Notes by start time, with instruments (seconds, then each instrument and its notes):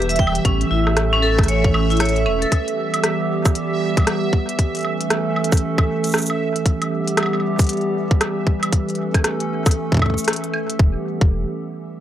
Already playing: sub bass E1, ambient pad E3 G3 B3 G4, synth texture E5
0.02 closed hi-hat
0.09 vibraphone E5, closed hi-hat
0.16 vibraphone G5, kick, closed hi-hat
0.27 high woodblock
0.35 closed hi-hat
0.45 sub bass A1, ambient pad A3 C#4 A4, vibraphone C#4, kick, closed hi-hat
0.61 closed hi-hat
0.71 sub bass A1, vibraphone E4
0.87 cross-stick, high woodblock
0.97 cross-stick, closed hi-hat
1.13 vibraphone C#4
1.22 vibraphone A4
1.39 kick, cross-stick, high woodblock
1.41 cross-stick
1.43 cross-stick, closed hi-hat
1.46 vibraphone C#5, cross-stick, closed hi-hat
1.64 vibraphone C#4, kick
1.74 vibraphone C#4, high woodblock
1.90 vibraphone E4, closed hi-hat
1.97 cross-stick, closed hi-hat
2.00 vibraphone C#5, closed hi-hat
2.05 closed hi-hat
2.09 closed hi-hat
2.16 vibraphone E5, closed hi-hat
2.26 sub bass E1, vibraphone C#4, high woodblock
2.42 vibraphone A4, closed hi-hat
2.52 ambient pad G3 B3 G4, kick, closed hi-hat, high woodblock
2.68 closed hi-hat
2.94 closed hi-hat, high woodblock
3.04 cross-stick, closed hi-hat
3.45 kick, cross-stick, closed hi-hat, cabasa, high woodblock
3.55 closed hi-hat
3.97 kick, closed hi-hat, high woodblock
4.00 high woodblock
4.02 high woodblock
4.05 cross-stick, closed hi-hat, high woodblock
4.07 high woodblock
4.11 high woodblock
4.15 high woodblock
4.19 high woodblock
4.33 kick
4.49 closed hi-hat
4.59 ambient pad A3 C#4 A4, kick, closed hi-hat
4.75 closed hi-hat
4.77 closed hi-hat
4.79 closed hi-hat
4.81 closed hi-hat, high woodblock
5.01 closed hi-hat
5.10 cross-stick, closed hi-hat
5.36 high woodblock
5.44 closed hi-hat
5.52 kick, cross-stick, cabasa
5.57 closed hi-hat
5.78 kick, high woodblock
6.04 closed hi-hat, cabasa
6.07 cabasa
6.09 cabasa
6.11 cross-stick, cabasa
6.14 cabasa
6.18 cabasa
6.22 cabasa
6.26 cabasa, high woodblock
6.56 closed hi-hat
6.66 ambient pad E3 G3 B3 G4, kick, closed hi-hat
6.82 closed hi-hat, high woodblock
7.08 closed hi-hat
7.17 cross-stick, closed hi-hat, high woodblock
7.23 high woodblock
7.26 high woodblock
7.33 high woodblock
7.40 high woodblock
7.59 kick, closed hi-hat, cabasa
7.62 closed hi-hat
7.64 closed hi-hat
7.67 closed hi-hat
7.69 closed hi-hat
7.73 closed hi-hat
7.77 closed hi-hat
7.81 closed hi-hat
8.11 kick
8.21 cross-stick, closed hi-hat, high woodblock
8.47 kick
8.63 closed hi-hat, high woodblock
8.72 ambient pad A3 C#4 A4, kick, closed hi-hat
8.89 closed hi-hat
8.95 closed hi-hat
9.14 kick, cross-stick, closed hi-hat, high woodblock
9.24 cross-stick, closed hi-hat
9.40 closed hi-hat
9.66 kick, cross-stick, closed hi-hat, cabasa, high woodblock
9.71 closed hi-hat
9.92 kick
9.94 kick
9.97 kick
9.99 kick
10.02 kick, high woodblock
10.06 kick
10.10 kick
10.14 kick
10.18 closed hi-hat, cabasa
10.24 cross-stick, closed hi-hat
10.28 closed hi-hat
10.33 closed hi-hat
10.36 closed hi-hat
10.44 closed hi-hat
10.54 high woodblock
10.70 closed hi-hat
10.79 sub bass E1, kick
11.21 sub bass E1, kick